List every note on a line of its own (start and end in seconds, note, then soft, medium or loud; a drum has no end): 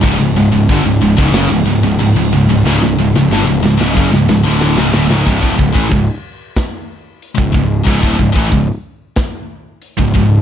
0.02 0.18 C#1 loud
0.02 0.19 C#2 loud
0.02 0.19 G#2 loud
0.02 kick loud
0.02 crash medium
0.19 0.35 C#1 medium
0.19 0.36 C#2 medium
0.19 0.36 G#2 medium
0.35 0.50 C#1 medium
0.35 0.51 C#2 medium
0.35 0.52 G#2 medium
0.51 0.67 C#1 medium
0.51 0.69 C#2 medium
0.51 0.69 G#2 medium
0.69 0.83 G1 loud
0.69 0.85 G2 loud
0.69 0.85 D3 loud
0.69 kick loud
0.69 crash medium
0.84 1.00 C#1 medium
0.84 1.01 C#2 medium
0.84 1.02 G#2 medium
1.01 1.17 C#1 medium
1.01 1.16 C#2 medium
1.01 1.17 G#2 medium
1.18 1.32 C#1 medium
1.18 1.33 C#2 medium
1.18 1.34 G#2 loud
1.18 kick loud
1.32 1.49 F#1 loud
1.32 1.50 F#2 loud
1.32 1.50 C#3 loud
1.32 snare loud
1.32 crash medium
1.49 1.65 C#1 medium
1.49 1.65 C#2 medium
1.49 1.67 G#2 medium
1.66 1.82 C#1 medium
1.66 1.83 C#2 medium
1.66 1.83 G#2 medium
1.82 1.98 C#1 medium
1.82 1.99 C#2 medium
1.82 2.00 G#2 medium
1.99 2.14 C#1 medium
1.99 2.16 C#2 medium
1.99 2.17 G#2 medium
1.99 crash medium
2.15 2.30 C#1 medium
2.15 2.32 C#2 medium
2.15 2.32 G#2 medium
2.31 2.47 C#1 medium
2.31 2.48 C#2 medium
2.31 2.48 G#2 medium
2.48 2.64 C#1 medium
2.48 2.64 C#2 medium
2.48 2.65 G#2 medium
2.64 2.80 C#1 loud
2.64 2.80 C#2 loud
2.64 2.81 G#2 loud
2.64 snare medium
2.80 2.96 C#1 medium
2.80 2.98 C#2 medium
2.80 2.97 G#2 medium
2.80 snare medium
2.84 2.99 G#2 medium
2.97 3.13 C#1 medium
2.97 3.15 C#2 medium
2.97 3.15 G#2 medium
3.14 3.29 C#1 medium
3.14 3.32 C#2 medium
3.14 3.32 G#2 medium
3.14 snare medium
3.31 3.46 G1 loud
3.31 3.47 G2 loud
3.31 3.47 D3 loud
3.31 snare medium
3.48 3.62 C#1 medium
3.48 3.63 C#2 medium
3.48 3.64 G#2 medium
3.63 3.78 C#1 medium
3.63 3.78 C#2 medium
3.63 3.79 G#2 medium
3.63 snare medium
3.80 3.95 C#1 loud
3.80 3.95 C#2 loud
3.80 3.95 G#2 loud
3.80 snare medium
3.96 4.12 F#1 loud
3.96 4.11 F#2 loud
3.96 4.11 C#3 loud
3.96 kick loud
4.13 4.28 C#1 medium
4.13 4.28 C#2 medium
4.13 4.28 G#2 medium
4.13 snare medium
4.29 4.44 C#1 medium
4.29 4.45 C#2 medium
4.29 4.45 G#2 medium
4.29 snare medium
4.46 4.75 D1 medium
4.46 4.77 D2 medium
4.46 4.77 A2 medium
4.46 4.77 D3 loud
4.61 snare medium
4.78 4.93 C#1 medium
4.78 4.93 C#2 medium
4.78 4.93 G#2 loud
4.78 snare medium
4.92 5.09 D1 loud
4.92 5.10 D2 loud
4.92 5.08 A2 loud
4.92 snare loud
4.96 5.10 A2 loud
5.10 5.25 C#1 loud
5.10 5.26 C#2 medium
5.10 5.26 G#2 medium
5.10 snare medium
5.26 5.41 C#1 loud
5.26 5.42 C#2 medium
5.26 5.42 G#2 loud
5.26 kick loud
5.26 crash loud
5.43 5.58 D1 medium
5.43 5.58 D2 medium
5.43 5.58 A2 medium
5.43 kick loud
5.59 5.74 C#1 medium
5.59 5.74 C#2 medium
5.59 5.75 G#2 medium
5.59 kick medium
5.74 5.90 A1 medium
5.74 5.90 A2 medium
5.74 5.90 E3 medium
5.74 kick loud
5.91 6.07 C#1 medium
5.91 6.07 C#2 medium
5.91 6.07 G#2 medium
5.91 kick loud
5.91 open hi-hat medium
6.56 kick loud
6.56 snare loud
6.56 open hi-hat medium
7.22 open hi-hat medium
7.38 7.53 C#1 medium
7.38 7.53 C#2 medium
7.38 7.54 G#2 medium
7.38 kick medium
7.54 7.84 C#1 medium
7.54 7.80 C#2 medium
7.54 7.80 G#2 medium
7.54 kick medium
7.86 8.02 C#1 medium
7.86 8.02 C#2 medium
7.86 8.02 G#2 loud
7.86 kick loud
7.86 open hi-hat medium
8.02 8.18 D1 medium
8.02 8.18 D2 medium
8.02 8.19 A2 medium
8.02 kick loud
8.19 8.34 C#1 medium
8.19 8.35 C#2 medium
8.19 8.36 G#2 medium
8.19 kick medium
8.35 8.51 A1 medium
8.35 8.51 A2 medium
8.35 8.51 E3 medium
8.35 kick loud
8.52 8.67 C#1 medium
8.52 8.68 C#2 medium
8.52 8.68 G#2 medium
8.52 kick loud
8.52 open hi-hat medium
9.16 kick loud
9.16 snare loud
9.16 open hi-hat medium
9.82 open hi-hat medium
9.97 10.14 C#1 medium
9.97 10.13 C#2 medium
9.97 10.14 G#2 medium
9.97 kick medium
10.15 10.42 C#1 medium
10.15 10.41 C#2 medium
10.15 10.41 G#2 medium
10.15 kick medium